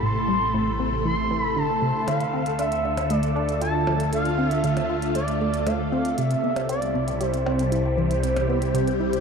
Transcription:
Already playing: analog synth bass A1, string machine C3 A3 E4 A4
0.03 synth arpeggio sound A2, analog synth lead C6
0.28 synth arpeggio sound G3
0.54 synth arpeggio sound A2
0.80 synth arpeggio sound C4
1.05 synth arpeggio sound E3, analog synth lead C6
1.31 synth arpeggio sound E3
1.41 analog synth lead B5
1.56 synth arpeggio sound D3, analog synth lead A5
1.82 synth arpeggio sound C3
2.08 analog synth bass D2, synth arpeggio sound D3, string machine D3, analog synth lead F5, closed hi-hat, percussion blips
2.21 closed hi-hat
2.33 synth arpeggio sound C4
2.46 closed hi-hat
2.59 synth arpeggio sound D4, analog synth lead E5, closed hi-hat
2.72 closed hi-hat
2.85 synth arpeggio sound D3
2.97 closed hi-hat, percussion blips
3.10 synth arpeggio sound A3, analog synth lead D5, closed hi-hat
3.23 closed hi-hat
3.36 synth arpeggio sound D4
3.49 closed hi-hat
3.61 synth arpeggio sound F4, analog synth lead A5, closed hi-hat
3.71 string machine F4
3.87 synth arpeggio sound F3, percussion blips
4.00 closed hi-hat
4.13 synth arpeggio sound D3, analog synth lead F5, closed hi-hat
4.25 closed hi-hat
4.38 synth arpeggio sound C4
4.48 analog synth lead E5, closed hi-hat
4.64 synth arpeggio sound D3, analog synth lead E5, closed hi-hat
4.77 closed hi-hat, percussion blips
4.90 synth arpeggio sound F4
5.02 closed hi-hat
5.15 synth arpeggio sound A3, analog synth lead D5, closed hi-hat
5.28 closed hi-hat
5.41 synth arpeggio sound A3
5.54 closed hi-hat
5.67 synth arpeggio sound A3, analog synth lead F5, closed hi-hat, percussion blips
5.92 synth arpeggio sound C4
6.05 closed hi-hat
6.18 analog synth bass C2, string machine C3, synth arpeggio sound C3, analog synth lead E5, closed hi-hat
6.31 closed hi-hat
6.44 synth arpeggio sound B3
6.56 closed hi-hat, percussion blips
6.69 synth arpeggio sound C4, string machine E4, analog synth lead D5, closed hi-hat
6.77 string machine G3
6.82 closed hi-hat
6.95 synth arpeggio sound C3
7.08 closed hi-hat
7.21 synth arpeggio sound G3, analog synth lead C5, closed hi-hat
7.34 closed hi-hat
7.46 synth arpeggio sound C4, percussion blips
7.59 closed hi-hat
7.72 synth arpeggio sound E4, closed hi-hat
7.97 synth arpeggio sound E3
8.03 string machine G4
8.11 closed hi-hat
8.23 synth arpeggio sound C3, closed hi-hat
8.36 closed hi-hat, percussion blips
8.49 synth arpeggio sound B3
8.62 closed hi-hat
8.74 synth arpeggio sound C3, closed hi-hat
8.88 closed hi-hat
9.00 synth arpeggio sound E4
9.13 closed hi-hat

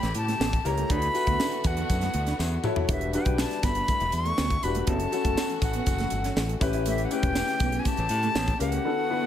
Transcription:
Already playing: string section C#3 A3 G4, grand piano E4 G4 B4 C#5, flute B5
0.03 fingered electric bass A1, snare, closed hi-hat
0.15 fingered electric bass A2, flute A5, muted clean electric guitar stroke, closed hi-hat
0.28 clean electric guitar A3, snare, closed hi-hat
0.40 fingered electric bass A1, string section C#3 A#3, clean electric guitar B3, snare, tambourine
0.53 kick, closed hi-hat
0.65 fingered electric bass C#2, grand piano E4 G4 A#4 C#5, flute A#5, muted clean electric guitar stroke, closed hi-hat, tambourine
0.77 clean electric guitar A3, closed hi-hat
0.89 fingered electric bass D2, string section D3 B3 F#4, clean electric guitar D4, grand piano E4 F#4 A4 B4, flute B5, kick, closed hi-hat
1.02 closed hi-hat
1.14 grand piano E4 F#4 A4 B4, muted clean electric guitar stroke, closed hi-hat, tambourine
1.27 fingered electric bass D2, clean electric guitar B3, kick, closed hi-hat
1.40 clean electric guitar D4, snare, tambourine
1.52 muted clean electric guitar stroke, closed hi-hat
1.64 fingered electric bass E2, flute F#5, kick, closed hi-hat, tambourine
1.77 clean electric guitar B3, closed hi-hat
1.90 fingered electric bass F#2, kick, closed hi-hat, tambourine
2.01 clean electric guitar A3, snare, closed hi-hat
2.14 fingered electric bass D2, muted clean electric guitar stroke, closed hi-hat
2.27 clean electric guitar D4, snare, closed hi-hat
2.39 fingered electric bass E2, muted clean electric guitar stroke, snare, tambourine
2.64 grand piano E4 F#4 A4 C#5, clean electric guitar E4, mid tom, tambourine
2.76 clean electric guitar E4, floor tom
2.88 fingered electric bass E1, string section D3 G3 E4, grand piano D4 F#4 G4 B4, clean electric guitar E4, flute E5, kick, closed hi-hat, tambourine
3.01 muted clean electric guitar stroke, closed hi-hat
3.13 grand piano D4 F#4 G4 B4, clean electric guitar D4, flute G5, closed hi-hat, tambourine
3.25 fingered electric bass B1, kick, closed hi-hat
3.38 flute A5, snare, tambourine
3.51 snare, closed hi-hat
3.63 fingered electric bass G1, clean electric guitar B3, flute B5, kick, snare, closed hi-hat, tambourine
3.75 clean electric guitar B3, closed hi-hat
3.88 clean electric guitar A3, kick, closed hi-hat, tambourine
4.00 fingered electric bass E1, closed hi-hat
4.12 fingered electric bass E2, flute C#6, muted clean electric guitar stroke, closed hi-hat, tambourine
4.25 clean electric guitar A3, closed hi-hat
4.38 fingered electric bass D2, clean electric guitar B3, snare, tambourine
4.50 kick, closed hi-hat
4.63 fingered electric bass E1, grand piano D4 F#4 G4 B4, flute B5, muted clean electric guitar stroke, closed hi-hat, tambourine
4.75 clean electric guitar A3, closed hi-hat
4.87 fingered electric bass F#1, string section E3 A3 F#4, clean electric guitar B3, grand piano C#4 E4 F#4 A4, flute A5, kick, closed hi-hat
5.00 closed hi-hat
5.11 grand piano C#4 E4 F#4 A4, muted clean electric guitar stroke, closed hi-hat, tambourine
5.25 fingered electric bass F#1, clean electric guitar A3, kick, closed hi-hat
5.37 clean electric guitar C#4, snare, tambourine
5.50 muted clean electric guitar stroke, closed hi-hat
5.62 fingered electric bass A1, flute F#5, kick, closed hi-hat, tambourine
5.73 clean electric guitar B3, closed hi-hat
5.86 fingered electric bass F#1, kick, closed hi-hat, tambourine
5.98 clean electric guitar A3, snare, closed hi-hat
6.10 fingered electric bass G1, muted clean electric guitar stroke, closed hi-hat, tambourine
6.24 clean electric guitar C#4, snare, closed hi-hat
6.36 fingered electric bass A1, muted clean electric guitar stroke, snare, tambourine
6.49 closed hi-hat
6.60 fingered electric bass A1, string section C#3 G4, grand piano C#4 E4 G4 B4, clean electric guitar E4, kick, closed hi-hat, tambourine
6.73 clean electric guitar E4, closed hi-hat
6.86 clean electric guitar A3, flute E5, closed hi-hat, tambourine
6.98 muted clean electric guitar stroke, closed hi-hat
7.05 flute F#5
7.11 grand piano C#4 E4 G4 B4, clean electric guitar C#4, flute G5, closed hi-hat, tambourine
7.23 fingered electric bass E1, kick, closed hi-hat
7.35 muted clean electric guitar stroke, snare, tambourine
7.48 snare, closed hi-hat
7.60 fingered electric bass B1, clean electric guitar B3, kick, closed hi-hat, tambourine
7.72 clean electric guitar B3, closed hi-hat
7.79 flute G#5
7.85 clean electric guitar A3, flute A5, kick, closed hi-hat, tambourine
7.97 fingered electric bass A1, closed hi-hat
8.09 fingered electric bass A2, muted clean electric guitar stroke, closed hi-hat, tambourine
8.23 clean electric guitar A3, closed hi-hat
8.35 fingered electric bass A1, string section A#3, clean electric guitar B3, snare, tambourine
8.48 kick, closed hi-hat
8.59 fingered electric bass C#2, grand piano C#4 E4 G4 A#4, flute F#5, muted clean electric guitar stroke, closed hi-hat, tambourine
8.72 clean electric guitar A3, closed hi-hat
8.84 grand piano D3 B3 E4 F#4 A4, string section D3 B3 F#4, clean electric guitar D4
9.10 grand piano D3 B3 E4 F#4 B4, muted clean electric guitar stroke
9.22 clean electric guitar B3

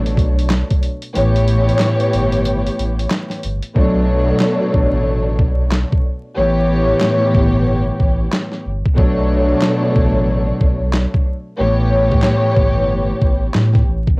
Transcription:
Already playing: sub bass A1, string section B2 F#3 A3 D4 C#5
0.06 closed hi-hat
0.17 sub bass B1, kick, closed hi-hat
0.39 closed hi-hat
0.50 snare, clap, closed hi-hat
0.70 kick, closed hi-hat
0.83 closed hi-hat
1.02 closed hi-hat
1.14 sub bass A1, string section A2 E3 B3 G4 C#5, closed hi-hat
1.36 closed hi-hat
1.48 closed hi-hat
1.69 closed hi-hat
1.79 snare, clap, closed hi-hat
2.00 closed hi-hat
2.13 sub bass G1, closed hi-hat
2.32 closed hi-hat
2.45 closed hi-hat
2.67 closed hi-hat
2.79 sub bass A1, closed hi-hat
2.99 closed hi-hat
3.10 snare, clap, closed hi-hat
3.30 snare, closed hi-hat
3.43 sub bass G1, closed hi-hat
3.63 closed hi-hat
3.74 sub bass B1, string section B2 F#3 A3 D4 C#5, kick
4.40 snare, clap
4.74 sub bass A1, kick
5.39 sub bass B1, kick
5.71 snare, clap
5.92 kick
6.35 sub bass A1, string section A2 E3 B3 G4 C#5
7.01 snare, clap
7.35 sub bass G1, kick
8.00 sub bass A1, kick
8.32 snare, clap
8.52 snare
8.66 sub bass G1
8.86 kick
8.95 sub bass B1, string section B2 F#3 A3 D4 C#5, kick
9.62 snare, clap
9.96 sub bass A1, kick
10.61 sub bass B1, kick
10.93 snare, clap
11.14 kick
11.57 sub bass A1, string section A2 E3 B3 G4 C#5
12.12 kick
12.22 snare, clap
12.57 sub bass G1, kick
13.22 sub bass A1, kick
13.54 sub bass A2, snare, clap
13.74 kick, snare
13.88 sub bass A1
14.07 kick

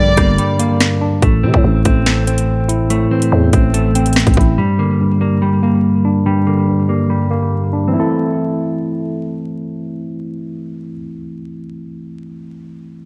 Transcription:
Already playing: 808-style bass A#1, tine electric piano G2 D3 G3 A#3 D4, clean electric guitar G3 A#3, violin section D5
0.17 808-style bass G1, tine electric piano G3, clean electric guitar A#3, kick, cross-stick, closed hi-hat
0.38 clean electric guitar G3, closed hi-hat
0.59 tine electric piano A#3, clean electric guitar A#3, closed hi-hat
0.80 snare, closed hi-hat
1.01 tine electric piano D4
1.22 808-style bass A1, tine electric piano A2, clean electric guitar A3, kick, closed hi-hat
1.43 808-style bass C3, tine electric piano E3, clean electric guitar C4
1.54 808-style bass A2, kick
1.64 808-style bass A1, tine electric piano A2
1.85 808-style bass A1, tine electric piano A3, clean electric guitar C4, kick, closed hi-hat
2.06 clean electric guitar A3, snare, closed hi-hat
2.27 clean electric guitar C4, tine electric piano C4, closed hi-hat
2.38 closed hi-hat
2.69 tine electric piano E4, closed hi-hat
2.90 tine electric piano A2, clean electric guitar A3, closed hi-hat
3.11 tine electric piano E3, clean electric guitar C4
3.22 closed hi-hat
3.32 808-style bass E2, tine electric piano A2
3.53 808-style bass A1, tine electric piano A3, clean electric guitar C4, kick, closed hi-hat
3.74 clean electric guitar A3, closed hi-hat
3.95 clean electric guitar C4, tine electric piano C4, closed hi-hat
4.06 closed hi-hat
4.13 snare, closed hi-hat
4.20 closed hi-hat
4.27 808-style bass A1, kick, closed hi-hat
4.34 808-style bass A1, tine electric piano E4, kick, closed hi-hat
4.41 closed hi-hat
4.58 tine electric piano G2, clean electric guitar G3
4.78 tine electric piano D3, clean electric guitar A#3
5.00 tine electric piano G2
5.21 tine electric piano G3, clean electric guitar A#3
5.42 clean electric guitar G3
5.62 tine electric piano A#3, clean electric guitar A#3
6.05 tine electric piano D4
6.26 tine electric piano G2, clean electric guitar G3
6.47 tine electric piano D3, clean electric guitar A#3
6.67 tine electric piano G2
6.89 tine electric piano G3, clean electric guitar A#3
7.10 clean electric guitar G3
7.30 tine electric piano A#3, clean electric guitar A#3
7.73 tine electric piano D4
7.88 tine electric piano E3 A3, clean electric guitar C4
7.94 tine electric piano C4, clean electric guitar E4
8.00 tine electric piano E4, clean electric guitar A4

